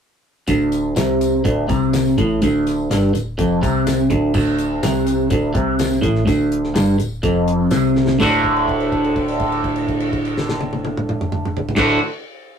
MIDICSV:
0, 0, Header, 1, 4, 480
1, 0, Start_track
1, 0, Tempo, 482315
1, 481, Time_signature, 4, 2, 24, 8
1, 12528, End_track
2, 0, Start_track
2, 0, Title_t, "Clean electric guitar"
2, 0, Program_c, 0, 27
2, 474, Note_on_c, 0, 38, 97
2, 952, Note_off_c, 0, 38, 0
2, 958, Note_on_c, 0, 48, 94
2, 1434, Note_off_c, 0, 48, 0
2, 1438, Note_on_c, 0, 38, 101
2, 1672, Note_off_c, 0, 38, 0
2, 1676, Note_on_c, 0, 48, 97
2, 2154, Note_off_c, 0, 48, 0
2, 2172, Note_on_c, 0, 45, 101
2, 2402, Note_off_c, 0, 45, 0
2, 2414, Note_on_c, 0, 38, 101
2, 2883, Note_off_c, 0, 38, 0
2, 2896, Note_on_c, 0, 43, 101
2, 3120, Note_off_c, 0, 43, 0
2, 3124, Note_on_c, 0, 38, 76
2, 3317, Note_off_c, 0, 38, 0
2, 3362, Note_on_c, 0, 41, 110
2, 3596, Note_off_c, 0, 41, 0
2, 3604, Note_on_c, 0, 48, 103
2, 4077, Note_off_c, 0, 48, 0
2, 4085, Note_on_c, 0, 38, 101
2, 4312, Note_off_c, 0, 38, 0
2, 4324, Note_on_c, 0, 38, 100
2, 4795, Note_off_c, 0, 38, 0
2, 4811, Note_on_c, 0, 48, 102
2, 5278, Note_off_c, 0, 48, 0
2, 5282, Note_on_c, 0, 38, 103
2, 5508, Note_off_c, 0, 38, 0
2, 5512, Note_on_c, 0, 48, 96
2, 5983, Note_off_c, 0, 48, 0
2, 5987, Note_on_c, 0, 45, 105
2, 6223, Note_off_c, 0, 45, 0
2, 6227, Note_on_c, 0, 38, 105
2, 6703, Note_off_c, 0, 38, 0
2, 6709, Note_on_c, 0, 43, 102
2, 6945, Note_off_c, 0, 43, 0
2, 6952, Note_on_c, 0, 38, 73
2, 7145, Note_off_c, 0, 38, 0
2, 7196, Note_on_c, 0, 41, 108
2, 7666, Note_off_c, 0, 41, 0
2, 7678, Note_on_c, 0, 48, 104
2, 8144, Note_off_c, 0, 48, 0
2, 8148, Note_on_c, 0, 38, 92
2, 8157, Note_on_c, 0, 45, 91
2, 8166, Note_on_c, 0, 50, 89
2, 8176, Note_on_c, 0, 57, 88
2, 8184, Note_on_c, 0, 66, 103
2, 11649, Note_off_c, 0, 38, 0
2, 11653, Note_off_c, 0, 45, 0
2, 11658, Note_off_c, 0, 50, 0
2, 11663, Note_off_c, 0, 57, 0
2, 11667, Note_off_c, 0, 66, 0
2, 11696, Note_on_c, 0, 38, 99
2, 11707, Note_on_c, 0, 45, 102
2, 11715, Note_on_c, 0, 50, 98
2, 11727, Note_on_c, 0, 57, 100
2, 11735, Note_on_c, 0, 66, 110
2, 11919, Note_off_c, 0, 38, 0
2, 11924, Note_off_c, 0, 45, 0
2, 11929, Note_off_c, 0, 50, 0
2, 11934, Note_off_c, 0, 57, 0
2, 11939, Note_off_c, 0, 66, 0
2, 12528, End_track
3, 0, Start_track
3, 0, Title_t, "FM bass"
3, 0, Program_c, 1, 39
3, 475, Note_on_c, 1, 26, 99
3, 926, Note_off_c, 1, 26, 0
3, 959, Note_on_c, 1, 36, 96
3, 1409, Note_off_c, 1, 36, 0
3, 1443, Note_on_c, 1, 26, 98
3, 1668, Note_off_c, 1, 26, 0
3, 1686, Note_on_c, 1, 36, 92
3, 2133, Note_off_c, 1, 36, 0
3, 2166, Note_on_c, 1, 33, 102
3, 2389, Note_off_c, 1, 33, 0
3, 2406, Note_on_c, 1, 26, 88
3, 2853, Note_off_c, 1, 26, 0
3, 2890, Note_on_c, 1, 31, 93
3, 3111, Note_off_c, 1, 31, 0
3, 3130, Note_on_c, 1, 26, 81
3, 3351, Note_off_c, 1, 26, 0
3, 3371, Note_on_c, 1, 29, 89
3, 3591, Note_off_c, 1, 29, 0
3, 3608, Note_on_c, 1, 36, 90
3, 4052, Note_off_c, 1, 36, 0
3, 4083, Note_on_c, 1, 26, 100
3, 4307, Note_off_c, 1, 26, 0
3, 4329, Note_on_c, 1, 26, 100
3, 4772, Note_off_c, 1, 26, 0
3, 4804, Note_on_c, 1, 36, 102
3, 5248, Note_off_c, 1, 36, 0
3, 5285, Note_on_c, 1, 26, 83
3, 5506, Note_off_c, 1, 26, 0
3, 5522, Note_on_c, 1, 36, 100
3, 5966, Note_off_c, 1, 36, 0
3, 6005, Note_on_c, 1, 33, 102
3, 6224, Note_off_c, 1, 33, 0
3, 6245, Note_on_c, 1, 26, 94
3, 6686, Note_off_c, 1, 26, 0
3, 6723, Note_on_c, 1, 31, 87
3, 6942, Note_off_c, 1, 31, 0
3, 6959, Note_on_c, 1, 26, 82
3, 7179, Note_off_c, 1, 26, 0
3, 7200, Note_on_c, 1, 29, 96
3, 7643, Note_off_c, 1, 29, 0
3, 7674, Note_on_c, 1, 36, 96
3, 8119, Note_off_c, 1, 36, 0
3, 8154, Note_on_c, 1, 26, 99
3, 11612, Note_off_c, 1, 26, 0
3, 11708, Note_on_c, 1, 26, 92
3, 11910, Note_off_c, 1, 26, 0
3, 12528, End_track
4, 0, Start_track
4, 0, Title_t, "Drums"
4, 471, Note_on_c, 9, 54, 79
4, 473, Note_on_c, 9, 42, 85
4, 478, Note_on_c, 9, 36, 102
4, 571, Note_off_c, 9, 54, 0
4, 572, Note_off_c, 9, 42, 0
4, 578, Note_off_c, 9, 36, 0
4, 717, Note_on_c, 9, 42, 74
4, 718, Note_on_c, 9, 54, 77
4, 816, Note_off_c, 9, 42, 0
4, 818, Note_off_c, 9, 54, 0
4, 957, Note_on_c, 9, 54, 92
4, 963, Note_on_c, 9, 42, 103
4, 965, Note_on_c, 9, 38, 113
4, 1056, Note_off_c, 9, 54, 0
4, 1063, Note_off_c, 9, 42, 0
4, 1065, Note_off_c, 9, 38, 0
4, 1205, Note_on_c, 9, 54, 72
4, 1207, Note_on_c, 9, 42, 69
4, 1304, Note_off_c, 9, 54, 0
4, 1306, Note_off_c, 9, 42, 0
4, 1443, Note_on_c, 9, 42, 90
4, 1443, Note_on_c, 9, 54, 24
4, 1444, Note_on_c, 9, 36, 112
4, 1542, Note_off_c, 9, 42, 0
4, 1543, Note_off_c, 9, 36, 0
4, 1543, Note_off_c, 9, 54, 0
4, 1684, Note_on_c, 9, 42, 74
4, 1686, Note_on_c, 9, 36, 108
4, 1686, Note_on_c, 9, 54, 58
4, 1783, Note_off_c, 9, 42, 0
4, 1785, Note_off_c, 9, 54, 0
4, 1786, Note_off_c, 9, 36, 0
4, 1925, Note_on_c, 9, 42, 103
4, 1927, Note_on_c, 9, 38, 104
4, 1929, Note_on_c, 9, 54, 90
4, 2025, Note_off_c, 9, 42, 0
4, 2027, Note_off_c, 9, 38, 0
4, 2029, Note_off_c, 9, 54, 0
4, 2052, Note_on_c, 9, 38, 37
4, 2152, Note_off_c, 9, 38, 0
4, 2170, Note_on_c, 9, 36, 104
4, 2171, Note_on_c, 9, 54, 22
4, 2172, Note_on_c, 9, 42, 78
4, 2269, Note_off_c, 9, 36, 0
4, 2270, Note_off_c, 9, 54, 0
4, 2272, Note_off_c, 9, 42, 0
4, 2406, Note_on_c, 9, 42, 96
4, 2409, Note_on_c, 9, 36, 99
4, 2412, Note_on_c, 9, 54, 59
4, 2506, Note_off_c, 9, 42, 0
4, 2509, Note_off_c, 9, 36, 0
4, 2512, Note_off_c, 9, 54, 0
4, 2653, Note_on_c, 9, 54, 56
4, 2657, Note_on_c, 9, 42, 72
4, 2659, Note_on_c, 9, 38, 37
4, 2753, Note_off_c, 9, 54, 0
4, 2756, Note_off_c, 9, 42, 0
4, 2758, Note_off_c, 9, 38, 0
4, 2895, Note_on_c, 9, 42, 102
4, 2897, Note_on_c, 9, 38, 103
4, 2897, Note_on_c, 9, 54, 79
4, 2994, Note_off_c, 9, 42, 0
4, 2996, Note_off_c, 9, 38, 0
4, 2996, Note_off_c, 9, 54, 0
4, 3132, Note_on_c, 9, 54, 62
4, 3136, Note_on_c, 9, 42, 67
4, 3231, Note_off_c, 9, 54, 0
4, 3235, Note_off_c, 9, 42, 0
4, 3371, Note_on_c, 9, 42, 90
4, 3372, Note_on_c, 9, 36, 97
4, 3372, Note_on_c, 9, 54, 26
4, 3470, Note_off_c, 9, 42, 0
4, 3471, Note_off_c, 9, 36, 0
4, 3472, Note_off_c, 9, 54, 0
4, 3612, Note_on_c, 9, 36, 107
4, 3614, Note_on_c, 9, 42, 77
4, 3616, Note_on_c, 9, 54, 65
4, 3711, Note_off_c, 9, 36, 0
4, 3713, Note_off_c, 9, 42, 0
4, 3715, Note_off_c, 9, 54, 0
4, 3849, Note_on_c, 9, 42, 91
4, 3850, Note_on_c, 9, 54, 104
4, 3851, Note_on_c, 9, 38, 104
4, 3949, Note_off_c, 9, 42, 0
4, 3949, Note_off_c, 9, 54, 0
4, 3951, Note_off_c, 9, 38, 0
4, 4084, Note_on_c, 9, 42, 68
4, 4087, Note_on_c, 9, 36, 101
4, 4097, Note_on_c, 9, 54, 27
4, 4184, Note_off_c, 9, 42, 0
4, 4187, Note_off_c, 9, 36, 0
4, 4197, Note_off_c, 9, 54, 0
4, 4317, Note_on_c, 9, 49, 87
4, 4318, Note_on_c, 9, 54, 78
4, 4327, Note_on_c, 9, 36, 96
4, 4417, Note_off_c, 9, 49, 0
4, 4418, Note_off_c, 9, 54, 0
4, 4426, Note_off_c, 9, 36, 0
4, 4562, Note_on_c, 9, 54, 71
4, 4563, Note_on_c, 9, 42, 72
4, 4661, Note_off_c, 9, 54, 0
4, 4663, Note_off_c, 9, 42, 0
4, 4807, Note_on_c, 9, 42, 96
4, 4807, Note_on_c, 9, 54, 102
4, 4809, Note_on_c, 9, 38, 117
4, 4906, Note_off_c, 9, 42, 0
4, 4907, Note_off_c, 9, 54, 0
4, 4908, Note_off_c, 9, 38, 0
4, 5042, Note_on_c, 9, 42, 77
4, 5045, Note_on_c, 9, 54, 69
4, 5142, Note_off_c, 9, 42, 0
4, 5145, Note_off_c, 9, 54, 0
4, 5279, Note_on_c, 9, 42, 106
4, 5284, Note_on_c, 9, 36, 106
4, 5284, Note_on_c, 9, 54, 26
4, 5378, Note_off_c, 9, 42, 0
4, 5383, Note_off_c, 9, 54, 0
4, 5384, Note_off_c, 9, 36, 0
4, 5521, Note_on_c, 9, 42, 77
4, 5524, Note_on_c, 9, 36, 103
4, 5621, Note_off_c, 9, 42, 0
4, 5623, Note_off_c, 9, 36, 0
4, 5762, Note_on_c, 9, 54, 103
4, 5768, Note_on_c, 9, 42, 103
4, 5770, Note_on_c, 9, 38, 107
4, 5861, Note_off_c, 9, 54, 0
4, 5867, Note_off_c, 9, 42, 0
4, 5869, Note_off_c, 9, 38, 0
4, 5895, Note_on_c, 9, 38, 34
4, 5994, Note_off_c, 9, 38, 0
4, 5996, Note_on_c, 9, 54, 27
4, 6004, Note_on_c, 9, 36, 108
4, 6005, Note_on_c, 9, 42, 83
4, 6095, Note_off_c, 9, 54, 0
4, 6104, Note_off_c, 9, 36, 0
4, 6104, Note_off_c, 9, 42, 0
4, 6123, Note_on_c, 9, 38, 35
4, 6223, Note_off_c, 9, 38, 0
4, 6244, Note_on_c, 9, 36, 104
4, 6244, Note_on_c, 9, 54, 67
4, 6248, Note_on_c, 9, 42, 91
4, 6343, Note_off_c, 9, 36, 0
4, 6343, Note_off_c, 9, 54, 0
4, 6347, Note_off_c, 9, 42, 0
4, 6487, Note_on_c, 9, 42, 69
4, 6587, Note_off_c, 9, 42, 0
4, 6609, Note_on_c, 9, 38, 34
4, 6709, Note_off_c, 9, 38, 0
4, 6722, Note_on_c, 9, 54, 84
4, 6724, Note_on_c, 9, 42, 97
4, 6726, Note_on_c, 9, 38, 119
4, 6822, Note_off_c, 9, 54, 0
4, 6823, Note_off_c, 9, 42, 0
4, 6825, Note_off_c, 9, 38, 0
4, 6964, Note_on_c, 9, 42, 65
4, 6972, Note_on_c, 9, 54, 65
4, 7063, Note_off_c, 9, 42, 0
4, 7072, Note_off_c, 9, 54, 0
4, 7197, Note_on_c, 9, 42, 95
4, 7200, Note_on_c, 9, 36, 106
4, 7209, Note_on_c, 9, 54, 27
4, 7297, Note_off_c, 9, 42, 0
4, 7300, Note_off_c, 9, 36, 0
4, 7308, Note_off_c, 9, 54, 0
4, 7441, Note_on_c, 9, 42, 78
4, 7541, Note_off_c, 9, 42, 0
4, 7669, Note_on_c, 9, 54, 95
4, 7674, Note_on_c, 9, 42, 90
4, 7676, Note_on_c, 9, 38, 102
4, 7768, Note_off_c, 9, 54, 0
4, 7774, Note_off_c, 9, 42, 0
4, 7776, Note_off_c, 9, 38, 0
4, 7922, Note_on_c, 9, 38, 65
4, 8022, Note_off_c, 9, 38, 0
4, 8033, Note_on_c, 9, 38, 97
4, 8132, Note_off_c, 9, 38, 0
4, 8156, Note_on_c, 9, 57, 81
4, 8159, Note_on_c, 9, 36, 100
4, 8165, Note_on_c, 9, 54, 84
4, 8256, Note_off_c, 9, 57, 0
4, 8258, Note_off_c, 9, 36, 0
4, 8264, Note_off_c, 9, 54, 0
4, 8398, Note_on_c, 9, 36, 66
4, 8401, Note_on_c, 9, 57, 45
4, 8498, Note_off_c, 9, 36, 0
4, 8501, Note_off_c, 9, 57, 0
4, 8523, Note_on_c, 9, 49, 41
4, 8622, Note_off_c, 9, 49, 0
4, 8640, Note_on_c, 9, 36, 60
4, 8648, Note_on_c, 9, 57, 47
4, 8739, Note_off_c, 9, 36, 0
4, 8747, Note_off_c, 9, 57, 0
4, 8759, Note_on_c, 9, 49, 40
4, 8858, Note_off_c, 9, 49, 0
4, 8878, Note_on_c, 9, 36, 57
4, 8880, Note_on_c, 9, 57, 50
4, 8977, Note_off_c, 9, 36, 0
4, 8979, Note_off_c, 9, 57, 0
4, 9001, Note_on_c, 9, 49, 46
4, 9100, Note_off_c, 9, 49, 0
4, 9115, Note_on_c, 9, 36, 70
4, 9115, Note_on_c, 9, 57, 47
4, 9214, Note_off_c, 9, 57, 0
4, 9215, Note_off_c, 9, 36, 0
4, 9236, Note_on_c, 9, 49, 54
4, 9336, Note_off_c, 9, 49, 0
4, 9350, Note_on_c, 9, 57, 53
4, 9355, Note_on_c, 9, 36, 72
4, 9450, Note_off_c, 9, 57, 0
4, 9454, Note_off_c, 9, 36, 0
4, 9475, Note_on_c, 9, 49, 51
4, 9575, Note_off_c, 9, 49, 0
4, 9594, Note_on_c, 9, 57, 51
4, 9595, Note_on_c, 9, 36, 64
4, 9693, Note_off_c, 9, 57, 0
4, 9694, Note_off_c, 9, 36, 0
4, 9710, Note_on_c, 9, 49, 54
4, 9809, Note_off_c, 9, 49, 0
4, 9836, Note_on_c, 9, 36, 61
4, 9837, Note_on_c, 9, 57, 58
4, 9935, Note_off_c, 9, 36, 0
4, 9936, Note_off_c, 9, 57, 0
4, 9955, Note_on_c, 9, 49, 58
4, 10054, Note_off_c, 9, 49, 0
4, 10079, Note_on_c, 9, 36, 58
4, 10079, Note_on_c, 9, 57, 48
4, 10178, Note_off_c, 9, 36, 0
4, 10179, Note_off_c, 9, 57, 0
4, 10201, Note_on_c, 9, 49, 49
4, 10300, Note_off_c, 9, 49, 0
4, 10325, Note_on_c, 9, 38, 95
4, 10425, Note_off_c, 9, 38, 0
4, 10440, Note_on_c, 9, 38, 89
4, 10540, Note_off_c, 9, 38, 0
4, 10555, Note_on_c, 9, 48, 104
4, 10655, Note_off_c, 9, 48, 0
4, 10676, Note_on_c, 9, 48, 87
4, 10776, Note_off_c, 9, 48, 0
4, 10794, Note_on_c, 9, 48, 93
4, 10894, Note_off_c, 9, 48, 0
4, 10922, Note_on_c, 9, 47, 91
4, 11021, Note_off_c, 9, 47, 0
4, 11037, Note_on_c, 9, 47, 90
4, 11137, Note_off_c, 9, 47, 0
4, 11157, Note_on_c, 9, 45, 106
4, 11256, Note_off_c, 9, 45, 0
4, 11267, Note_on_c, 9, 45, 104
4, 11367, Note_off_c, 9, 45, 0
4, 11400, Note_on_c, 9, 45, 95
4, 11499, Note_off_c, 9, 45, 0
4, 11511, Note_on_c, 9, 43, 97
4, 11610, Note_off_c, 9, 43, 0
4, 11630, Note_on_c, 9, 43, 107
4, 11706, Note_on_c, 9, 57, 101
4, 11708, Note_on_c, 9, 38, 102
4, 11711, Note_on_c, 9, 36, 116
4, 11729, Note_off_c, 9, 43, 0
4, 11805, Note_off_c, 9, 57, 0
4, 11807, Note_off_c, 9, 38, 0
4, 11811, Note_off_c, 9, 36, 0
4, 12528, End_track
0, 0, End_of_file